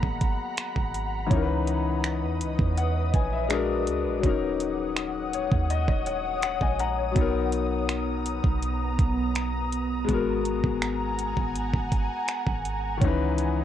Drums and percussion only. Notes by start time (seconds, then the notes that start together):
0.03 kick
0.21 kick, closed hi-hat
0.57 finger snap, closed hi-hat
0.76 kick
0.94 closed hi-hat
1.31 kick, closed hi-hat
1.67 closed hi-hat
2.04 finger snap, closed hi-hat
2.41 closed hi-hat
2.59 kick
2.77 closed hi-hat
3.14 kick, closed hi-hat
3.50 finger snap, closed hi-hat
3.87 closed hi-hat
4.23 kick, closed hi-hat
4.60 closed hi-hat
4.96 finger snap, closed hi-hat
5.33 closed hi-hat
5.51 kick
5.70 closed hi-hat
5.88 kick
6.06 closed hi-hat
6.43 finger snap, closed hi-hat
6.61 kick
6.80 closed hi-hat
7.16 kick, closed hi-hat
7.53 closed hi-hat
7.89 finger snap, closed hi-hat
8.26 closed hi-hat
8.44 kick
8.63 closed hi-hat
8.99 kick, closed hi-hat
9.35 finger snap, closed hi-hat
9.72 closed hi-hat
10.09 kick, closed hi-hat
10.45 closed hi-hat
10.64 kick
10.82 finger snap, closed hi-hat
11.19 closed hi-hat
11.37 kick
11.56 closed hi-hat
11.74 kick
11.92 kick, closed hi-hat
12.28 finger snap, closed hi-hat
12.47 kick
12.65 closed hi-hat
13.01 kick, closed hi-hat
13.38 closed hi-hat